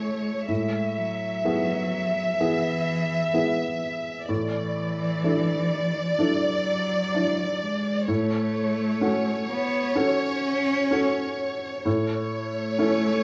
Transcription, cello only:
Already playing: A3
0.49 G#3
0.97 F#3
2.41 E3
4.30 E3
6.22 F#3
7.62 G#3
8.10 A3
9.51 B3
9.98 C#4
12.33 A3

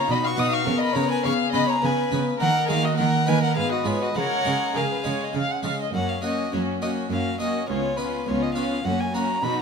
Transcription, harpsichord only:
0.08 B2
0.36 B2 D#4 F#4
0.66 C#3
0.95 C#3 C#4 B4
1.25 C#3
1.54 C#3 C#4 B4
1.83 C#3
2.11 C#3 C#4 B4
2.41 D#3
2.69 D#3 A#3 A#4
2.98 D#3
3.26 D#3 A#3 A#4
3.56 G#2
3.85 G#2 G#3 B3 G#4
4.15 C#3
4.44 C#3 G#3 C#4 G#4
4.74 C#3
5.04 C#3 G#3 C#4 G#4
5.33 C#3
5.63 C#3 G#3 C#4 G#4
5.93 F#2
6.22 A#3 C#4 F#4
6.52 F#2
6.82 A#3 C#4 F#4
7.10 F#2
7.40 A#3 C#4 F#4
7.68 C#2
7.97 B3 C#4 F4
8.26 C#2
8.55 B3 C#4 F4
8.85 F#2
9.14 A#3 C#4 F#4
9.43 B2

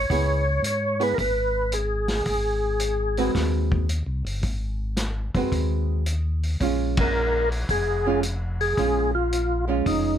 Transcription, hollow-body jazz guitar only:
0.10 B3 E4 G#4
1.00 B3 E4 G#4
3.18 G#3 C4 F#4 B4
5.36 G#3 C4 F#4 B4
6.61 G#3 C#4 F4
8.07 G#3 C#4 F4
8.78 G#3 C#4 F4
9.68 G#3 C#4 F4

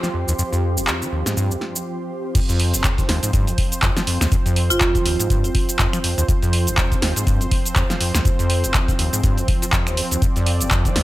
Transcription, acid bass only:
0.03 F3
0.14 F2
0.28 D#2
0.38 F2
0.52 F2
0.77 F1
0.88 F2
1.02 F3
1.12 D#2
1.26 G#2
1.37 G2
1.51 F2
2.35 F2
2.49 F2
2.74 F1
2.84 F2
2.98 F3
3.09 D#2
3.23 G#2
3.33 G2
3.47 F2
3.83 F2
3.96 F3
4.07 F2
4.21 D#2
4.32 F2
4.46 F2
4.70 F1
4.81 F2
4.95 F3
5.05 D#2
5.19 G#2
5.30 G2
5.44 F2
5.79 F2
5.93 F3
6.04 F2
6.18 D#2
6.28 F2
6.42 F2
6.67 F1
6.78 F2
6.92 F3
7.02 D#2
7.16 G#2
7.27 G2
7.41 F2
7.76 F2
7.90 F3
8.01 F2
8.15 D#2
8.25 F2
8.39 F2
8.64 F1
8.74 F2
8.88 F3
8.99 D#2
9.13 G#2
9.24 G2
9.38 F2
9.62 F3
9.73 F2
9.87 D#2
9.97 F2
10.11 D#2
10.22 F2
10.36 F2
10.61 F1
10.71 F2
10.85 F3
10.96 D#2

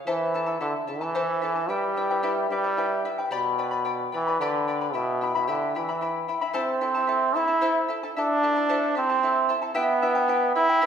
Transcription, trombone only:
0.08 E3
0.61 D3
0.88 E3
1.69 G3
2.50 G3
3.33 B2
4.15 E3
4.40 D3
4.95 B2
5.36 B2
5.49 D3
5.77 E3
6.56 C4
7.36 E4
8.18 D4
8.97 C4
9.77 B3
10.56 E4

